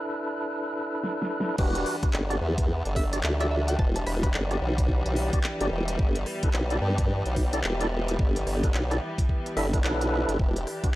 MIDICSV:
0, 0, Header, 1, 6, 480
1, 0, Start_track
1, 0, Key_signature, 1, "minor"
1, 0, Tempo, 550459
1, 1384, Time_signature, 4, 2, 24, 8
1, 9551, End_track
2, 0, Start_track
2, 0, Title_t, "Synth pluck"
2, 0, Program_c, 0, 84
2, 2583, Note_on_c, 0, 76, 94
2, 2750, Note_off_c, 0, 76, 0
2, 2971, Note_on_c, 0, 76, 94
2, 3030, Note_off_c, 0, 76, 0
2, 3063, Note_on_c, 0, 76, 74
2, 3157, Note_off_c, 0, 76, 0
2, 3210, Note_on_c, 0, 79, 91
2, 3285, Note_off_c, 0, 79, 0
2, 3306, Note_on_c, 0, 81, 90
2, 3399, Note_off_c, 0, 81, 0
2, 3452, Note_on_c, 0, 81, 78
2, 3511, Note_off_c, 0, 81, 0
2, 3545, Note_on_c, 0, 83, 91
2, 3638, Note_off_c, 0, 83, 0
2, 3690, Note_on_c, 0, 83, 79
2, 3750, Note_off_c, 0, 83, 0
2, 9551, End_track
3, 0, Start_track
3, 0, Title_t, "Tonewheel organ"
3, 0, Program_c, 1, 16
3, 0, Note_on_c, 1, 62, 68
3, 0, Note_on_c, 1, 64, 61
3, 0, Note_on_c, 1, 69, 62
3, 0, Note_on_c, 1, 71, 74
3, 1360, Note_off_c, 1, 62, 0
3, 1360, Note_off_c, 1, 64, 0
3, 1360, Note_off_c, 1, 69, 0
3, 1360, Note_off_c, 1, 71, 0
3, 1382, Note_on_c, 1, 66, 89
3, 1383, Note_on_c, 1, 62, 95
3, 1383, Note_on_c, 1, 67, 91
3, 1383, Note_on_c, 1, 71, 111
3, 1711, Note_off_c, 1, 62, 0
3, 1711, Note_off_c, 1, 66, 0
3, 1711, Note_off_c, 1, 67, 0
3, 1711, Note_off_c, 1, 71, 0
3, 1768, Note_on_c, 1, 66, 69
3, 1769, Note_on_c, 1, 62, 74
3, 1769, Note_on_c, 1, 67, 67
3, 1769, Note_on_c, 1, 71, 79
3, 1825, Note_off_c, 1, 66, 0
3, 1826, Note_off_c, 1, 62, 0
3, 1826, Note_off_c, 1, 67, 0
3, 1826, Note_off_c, 1, 71, 0
3, 2007, Note_on_c, 1, 67, 75
3, 2007, Note_on_c, 1, 74, 92
3, 2008, Note_on_c, 1, 62, 82
3, 2008, Note_on_c, 1, 66, 78
3, 2065, Note_off_c, 1, 62, 0
3, 2065, Note_off_c, 1, 66, 0
3, 2065, Note_off_c, 1, 67, 0
3, 2065, Note_off_c, 1, 74, 0
3, 2728, Note_on_c, 1, 62, 94
3, 2729, Note_on_c, 1, 66, 88
3, 2729, Note_on_c, 1, 67, 86
3, 2729, Note_on_c, 1, 74, 107
3, 2785, Note_off_c, 1, 62, 0
3, 2786, Note_off_c, 1, 66, 0
3, 2786, Note_off_c, 1, 67, 0
3, 2786, Note_off_c, 1, 74, 0
3, 2969, Note_on_c, 1, 66, 79
3, 2969, Note_on_c, 1, 67, 80
3, 2970, Note_on_c, 1, 62, 90
3, 2970, Note_on_c, 1, 74, 94
3, 3026, Note_off_c, 1, 62, 0
3, 3026, Note_off_c, 1, 66, 0
3, 3026, Note_off_c, 1, 67, 0
3, 3026, Note_off_c, 1, 74, 0
3, 3689, Note_on_c, 1, 62, 74
3, 3689, Note_on_c, 1, 66, 68
3, 3689, Note_on_c, 1, 67, 69
3, 3689, Note_on_c, 1, 71, 83
3, 3746, Note_off_c, 1, 62, 0
3, 3746, Note_off_c, 1, 66, 0
3, 3746, Note_off_c, 1, 67, 0
3, 3746, Note_off_c, 1, 71, 0
3, 3930, Note_on_c, 1, 62, 82
3, 3930, Note_on_c, 1, 67, 77
3, 3930, Note_on_c, 1, 74, 90
3, 3931, Note_on_c, 1, 66, 78
3, 3986, Note_off_c, 1, 62, 0
3, 3986, Note_off_c, 1, 74, 0
3, 3987, Note_off_c, 1, 66, 0
3, 3987, Note_off_c, 1, 67, 0
3, 4649, Note_on_c, 1, 62, 94
3, 4649, Note_on_c, 1, 66, 87
3, 4649, Note_on_c, 1, 67, 88
3, 4649, Note_on_c, 1, 74, 106
3, 4705, Note_off_c, 1, 62, 0
3, 4706, Note_off_c, 1, 66, 0
3, 4706, Note_off_c, 1, 67, 0
3, 4706, Note_off_c, 1, 74, 0
3, 4890, Note_on_c, 1, 62, 86
3, 4890, Note_on_c, 1, 66, 79
3, 4890, Note_on_c, 1, 67, 81
3, 4890, Note_on_c, 1, 74, 97
3, 4946, Note_off_c, 1, 62, 0
3, 4946, Note_off_c, 1, 66, 0
3, 4946, Note_off_c, 1, 67, 0
3, 4946, Note_off_c, 1, 74, 0
3, 5609, Note_on_c, 1, 62, 75
3, 5610, Note_on_c, 1, 64, 69
3, 5610, Note_on_c, 1, 71, 81
3, 5611, Note_on_c, 1, 69, 70
3, 5666, Note_off_c, 1, 62, 0
3, 5666, Note_off_c, 1, 64, 0
3, 5666, Note_off_c, 1, 71, 0
3, 5667, Note_off_c, 1, 69, 0
3, 5848, Note_on_c, 1, 62, 82
3, 5849, Note_on_c, 1, 64, 77
3, 5849, Note_on_c, 1, 69, 77
3, 5849, Note_on_c, 1, 74, 92
3, 5905, Note_off_c, 1, 62, 0
3, 5906, Note_off_c, 1, 64, 0
3, 5906, Note_off_c, 1, 69, 0
3, 5906, Note_off_c, 1, 74, 0
3, 6568, Note_on_c, 1, 62, 98
3, 6568, Note_on_c, 1, 64, 91
3, 6568, Note_on_c, 1, 69, 88
3, 6568, Note_on_c, 1, 74, 103
3, 6625, Note_off_c, 1, 62, 0
3, 6625, Note_off_c, 1, 64, 0
3, 6625, Note_off_c, 1, 69, 0
3, 6625, Note_off_c, 1, 74, 0
3, 6808, Note_on_c, 1, 62, 87
3, 6808, Note_on_c, 1, 64, 82
3, 6808, Note_on_c, 1, 69, 80
3, 6808, Note_on_c, 1, 74, 92
3, 6865, Note_off_c, 1, 62, 0
3, 6865, Note_off_c, 1, 64, 0
3, 6865, Note_off_c, 1, 69, 0
3, 6865, Note_off_c, 1, 74, 0
3, 7528, Note_on_c, 1, 62, 72
3, 7528, Note_on_c, 1, 64, 67
3, 7528, Note_on_c, 1, 69, 67
3, 7528, Note_on_c, 1, 71, 81
3, 7585, Note_off_c, 1, 62, 0
3, 7585, Note_off_c, 1, 64, 0
3, 7585, Note_off_c, 1, 71, 0
3, 7586, Note_off_c, 1, 69, 0
3, 7767, Note_on_c, 1, 62, 85
3, 7767, Note_on_c, 1, 69, 76
3, 7767, Note_on_c, 1, 74, 90
3, 7768, Note_on_c, 1, 64, 76
3, 7825, Note_off_c, 1, 62, 0
3, 7825, Note_off_c, 1, 64, 0
3, 7825, Note_off_c, 1, 69, 0
3, 7825, Note_off_c, 1, 74, 0
3, 8342, Note_on_c, 1, 62, 95
3, 8342, Note_on_c, 1, 69, 86
3, 8343, Note_on_c, 1, 64, 87
3, 8343, Note_on_c, 1, 76, 105
3, 8430, Note_off_c, 1, 62, 0
3, 8431, Note_off_c, 1, 64, 0
3, 8431, Note_off_c, 1, 69, 0
3, 8431, Note_off_c, 1, 76, 0
3, 8486, Note_on_c, 1, 62, 72
3, 8486, Note_on_c, 1, 69, 67
3, 8487, Note_on_c, 1, 64, 67
3, 8487, Note_on_c, 1, 71, 83
3, 8544, Note_off_c, 1, 62, 0
3, 8544, Note_off_c, 1, 69, 0
3, 8545, Note_off_c, 1, 64, 0
3, 8545, Note_off_c, 1, 71, 0
3, 8581, Note_on_c, 1, 62, 85
3, 8581, Note_on_c, 1, 64, 79
3, 8581, Note_on_c, 1, 71, 93
3, 8582, Note_on_c, 1, 69, 78
3, 9051, Note_off_c, 1, 62, 0
3, 9051, Note_off_c, 1, 64, 0
3, 9051, Note_off_c, 1, 71, 0
3, 9052, Note_off_c, 1, 69, 0
3, 9449, Note_on_c, 1, 62, 72
3, 9449, Note_on_c, 1, 66, 65
3, 9449, Note_on_c, 1, 67, 67
3, 9449, Note_on_c, 1, 71, 80
3, 9506, Note_off_c, 1, 62, 0
3, 9506, Note_off_c, 1, 66, 0
3, 9506, Note_off_c, 1, 67, 0
3, 9506, Note_off_c, 1, 71, 0
3, 9551, End_track
4, 0, Start_track
4, 0, Title_t, "String section"
4, 0, Program_c, 2, 48
4, 1381, Note_on_c, 2, 52, 80
4, 1382, Note_on_c, 2, 62, 77
4, 1383, Note_on_c, 2, 55, 91
4, 5188, Note_off_c, 2, 62, 0
4, 5224, Note_on_c, 2, 59, 74
4, 9028, Note_off_c, 2, 52, 0
4, 9029, Note_off_c, 2, 55, 0
4, 9029, Note_off_c, 2, 59, 0
4, 9062, Note_on_c, 2, 62, 75
4, 9062, Note_on_c, 2, 67, 91
4, 9063, Note_on_c, 2, 52, 83
4, 9551, Note_off_c, 2, 52, 0
4, 9551, Note_off_c, 2, 62, 0
4, 9551, Note_off_c, 2, 67, 0
4, 9551, End_track
5, 0, Start_track
5, 0, Title_t, "Wobble bass"
5, 0, Program_c, 3, 39
5, 1383, Note_on_c, 3, 28, 101
5, 1608, Note_off_c, 3, 28, 0
5, 1863, Note_on_c, 3, 31, 96
5, 2088, Note_off_c, 3, 31, 0
5, 2103, Note_on_c, 3, 40, 99
5, 2466, Note_off_c, 3, 40, 0
5, 2490, Note_on_c, 3, 31, 94
5, 2809, Note_off_c, 3, 31, 0
5, 2823, Note_on_c, 3, 38, 99
5, 3288, Note_off_c, 3, 38, 0
5, 3302, Note_on_c, 3, 28, 101
5, 3528, Note_off_c, 3, 28, 0
5, 3547, Note_on_c, 3, 28, 101
5, 3770, Note_off_c, 3, 28, 0
5, 3785, Note_on_c, 3, 31, 96
5, 4009, Note_off_c, 3, 31, 0
5, 4024, Note_on_c, 3, 35, 100
5, 4387, Note_off_c, 3, 35, 0
5, 4411, Note_on_c, 3, 35, 98
5, 4627, Note_off_c, 3, 35, 0
5, 4890, Note_on_c, 3, 31, 94
5, 4969, Note_off_c, 3, 31, 0
5, 4984, Note_on_c, 3, 28, 98
5, 5209, Note_off_c, 3, 28, 0
5, 5224, Note_on_c, 3, 31, 101
5, 5449, Note_off_c, 3, 31, 0
5, 5705, Note_on_c, 3, 35, 98
5, 5929, Note_off_c, 3, 35, 0
5, 5943, Note_on_c, 3, 43, 100
5, 6306, Note_off_c, 3, 43, 0
5, 6328, Note_on_c, 3, 35, 97
5, 6648, Note_off_c, 3, 35, 0
5, 6664, Note_on_c, 3, 28, 98
5, 7129, Note_off_c, 3, 28, 0
5, 7143, Note_on_c, 3, 31, 101
5, 7369, Note_off_c, 3, 31, 0
5, 7383, Note_on_c, 3, 31, 99
5, 7609, Note_off_c, 3, 31, 0
5, 7622, Note_on_c, 3, 35, 98
5, 7848, Note_off_c, 3, 35, 0
5, 8341, Note_on_c, 3, 31, 98
5, 8567, Note_off_c, 3, 31, 0
5, 8581, Note_on_c, 3, 35, 99
5, 8945, Note_off_c, 3, 35, 0
5, 8966, Note_on_c, 3, 31, 99
5, 9047, Note_off_c, 3, 31, 0
5, 9063, Note_on_c, 3, 28, 103
5, 9289, Note_off_c, 3, 28, 0
5, 9551, End_track
6, 0, Start_track
6, 0, Title_t, "Drums"
6, 903, Note_on_c, 9, 38, 63
6, 990, Note_off_c, 9, 38, 0
6, 1062, Note_on_c, 9, 38, 74
6, 1150, Note_off_c, 9, 38, 0
6, 1223, Note_on_c, 9, 38, 89
6, 1310, Note_off_c, 9, 38, 0
6, 1380, Note_on_c, 9, 49, 101
6, 1383, Note_on_c, 9, 36, 119
6, 1467, Note_off_c, 9, 49, 0
6, 1470, Note_off_c, 9, 36, 0
6, 1528, Note_on_c, 9, 42, 56
6, 1615, Note_off_c, 9, 42, 0
6, 1622, Note_on_c, 9, 37, 43
6, 1622, Note_on_c, 9, 46, 64
6, 1709, Note_off_c, 9, 37, 0
6, 1709, Note_off_c, 9, 46, 0
6, 1768, Note_on_c, 9, 42, 68
6, 1769, Note_on_c, 9, 36, 104
6, 1856, Note_off_c, 9, 36, 0
6, 1856, Note_off_c, 9, 42, 0
6, 1861, Note_on_c, 9, 39, 118
6, 1948, Note_off_c, 9, 39, 0
6, 2010, Note_on_c, 9, 42, 39
6, 2097, Note_off_c, 9, 42, 0
6, 2249, Note_on_c, 9, 36, 105
6, 2249, Note_on_c, 9, 42, 70
6, 2336, Note_off_c, 9, 36, 0
6, 2336, Note_off_c, 9, 42, 0
6, 2489, Note_on_c, 9, 42, 38
6, 2576, Note_off_c, 9, 42, 0
6, 2582, Note_on_c, 9, 46, 64
6, 2583, Note_on_c, 9, 36, 63
6, 2669, Note_off_c, 9, 46, 0
6, 2670, Note_off_c, 9, 36, 0
6, 2728, Note_on_c, 9, 42, 66
6, 2815, Note_off_c, 9, 42, 0
6, 2821, Note_on_c, 9, 39, 121
6, 2908, Note_off_c, 9, 39, 0
6, 2969, Note_on_c, 9, 42, 53
6, 3056, Note_off_c, 9, 42, 0
6, 3209, Note_on_c, 9, 42, 69
6, 3297, Note_off_c, 9, 42, 0
6, 3304, Note_on_c, 9, 36, 124
6, 3391, Note_off_c, 9, 36, 0
6, 3450, Note_on_c, 9, 42, 56
6, 3538, Note_off_c, 9, 42, 0
6, 3545, Note_on_c, 9, 37, 42
6, 3545, Note_on_c, 9, 46, 61
6, 3632, Note_off_c, 9, 37, 0
6, 3632, Note_off_c, 9, 46, 0
6, 3689, Note_on_c, 9, 36, 109
6, 3692, Note_on_c, 9, 42, 67
6, 3776, Note_off_c, 9, 36, 0
6, 3779, Note_off_c, 9, 42, 0
6, 3784, Note_on_c, 9, 39, 120
6, 3871, Note_off_c, 9, 39, 0
6, 3931, Note_on_c, 9, 37, 39
6, 3931, Note_on_c, 9, 42, 41
6, 4018, Note_off_c, 9, 37, 0
6, 4018, Note_off_c, 9, 42, 0
6, 4169, Note_on_c, 9, 36, 112
6, 4170, Note_on_c, 9, 42, 71
6, 4256, Note_off_c, 9, 36, 0
6, 4258, Note_off_c, 9, 42, 0
6, 4263, Note_on_c, 9, 36, 63
6, 4350, Note_off_c, 9, 36, 0
6, 4409, Note_on_c, 9, 42, 38
6, 4496, Note_off_c, 9, 42, 0
6, 4502, Note_on_c, 9, 46, 62
6, 4589, Note_off_c, 9, 46, 0
6, 4647, Note_on_c, 9, 42, 67
6, 4649, Note_on_c, 9, 36, 108
6, 4735, Note_off_c, 9, 42, 0
6, 4736, Note_off_c, 9, 36, 0
6, 4740, Note_on_c, 9, 39, 124
6, 4828, Note_off_c, 9, 39, 0
6, 4888, Note_on_c, 9, 42, 53
6, 4975, Note_off_c, 9, 42, 0
6, 5127, Note_on_c, 9, 42, 71
6, 5214, Note_off_c, 9, 42, 0
6, 5223, Note_on_c, 9, 36, 124
6, 5311, Note_off_c, 9, 36, 0
6, 5367, Note_on_c, 9, 42, 54
6, 5454, Note_off_c, 9, 42, 0
6, 5460, Note_on_c, 9, 37, 40
6, 5460, Note_on_c, 9, 46, 60
6, 5547, Note_off_c, 9, 37, 0
6, 5547, Note_off_c, 9, 46, 0
6, 5605, Note_on_c, 9, 42, 67
6, 5609, Note_on_c, 9, 36, 114
6, 5692, Note_off_c, 9, 42, 0
6, 5696, Note_off_c, 9, 36, 0
6, 5699, Note_on_c, 9, 39, 123
6, 5786, Note_off_c, 9, 39, 0
6, 5845, Note_on_c, 9, 42, 38
6, 5933, Note_off_c, 9, 42, 0
6, 6088, Note_on_c, 9, 42, 68
6, 6089, Note_on_c, 9, 36, 109
6, 6175, Note_off_c, 9, 42, 0
6, 6176, Note_off_c, 9, 36, 0
6, 6327, Note_on_c, 9, 42, 36
6, 6414, Note_off_c, 9, 42, 0
6, 6421, Note_on_c, 9, 46, 60
6, 6422, Note_on_c, 9, 36, 65
6, 6508, Note_off_c, 9, 46, 0
6, 6510, Note_off_c, 9, 36, 0
6, 6566, Note_on_c, 9, 42, 66
6, 6654, Note_off_c, 9, 42, 0
6, 6660, Note_on_c, 9, 39, 127
6, 6747, Note_off_c, 9, 39, 0
6, 6807, Note_on_c, 9, 42, 51
6, 6894, Note_off_c, 9, 42, 0
6, 7049, Note_on_c, 9, 42, 69
6, 7136, Note_off_c, 9, 42, 0
6, 7143, Note_on_c, 9, 36, 122
6, 7230, Note_off_c, 9, 36, 0
6, 7291, Note_on_c, 9, 42, 52
6, 7378, Note_off_c, 9, 42, 0
6, 7385, Note_on_c, 9, 37, 38
6, 7385, Note_on_c, 9, 46, 64
6, 7472, Note_off_c, 9, 37, 0
6, 7472, Note_off_c, 9, 46, 0
6, 7529, Note_on_c, 9, 36, 112
6, 7531, Note_on_c, 9, 42, 64
6, 7616, Note_off_c, 9, 36, 0
6, 7618, Note_off_c, 9, 42, 0
6, 7625, Note_on_c, 9, 39, 121
6, 7712, Note_off_c, 9, 39, 0
6, 7772, Note_on_c, 9, 37, 36
6, 7772, Note_on_c, 9, 42, 38
6, 7859, Note_off_c, 9, 37, 0
6, 7859, Note_off_c, 9, 42, 0
6, 8008, Note_on_c, 9, 36, 112
6, 8011, Note_on_c, 9, 42, 65
6, 8095, Note_off_c, 9, 36, 0
6, 8098, Note_off_c, 9, 42, 0
6, 8103, Note_on_c, 9, 36, 61
6, 8190, Note_off_c, 9, 36, 0
6, 8250, Note_on_c, 9, 42, 35
6, 8337, Note_off_c, 9, 42, 0
6, 8343, Note_on_c, 9, 46, 61
6, 8431, Note_off_c, 9, 46, 0
6, 8489, Note_on_c, 9, 36, 109
6, 8491, Note_on_c, 9, 42, 64
6, 8576, Note_off_c, 9, 36, 0
6, 8578, Note_off_c, 9, 42, 0
6, 8583, Note_on_c, 9, 39, 125
6, 8670, Note_off_c, 9, 39, 0
6, 8731, Note_on_c, 9, 42, 50
6, 8819, Note_off_c, 9, 42, 0
6, 8971, Note_on_c, 9, 42, 65
6, 9058, Note_off_c, 9, 42, 0
6, 9063, Note_on_c, 9, 36, 115
6, 9151, Note_off_c, 9, 36, 0
6, 9211, Note_on_c, 9, 42, 51
6, 9298, Note_off_c, 9, 42, 0
6, 9304, Note_on_c, 9, 37, 39
6, 9304, Note_on_c, 9, 46, 64
6, 9391, Note_off_c, 9, 37, 0
6, 9391, Note_off_c, 9, 46, 0
6, 9449, Note_on_c, 9, 36, 107
6, 9450, Note_on_c, 9, 42, 63
6, 9536, Note_off_c, 9, 36, 0
6, 9537, Note_off_c, 9, 42, 0
6, 9551, End_track
0, 0, End_of_file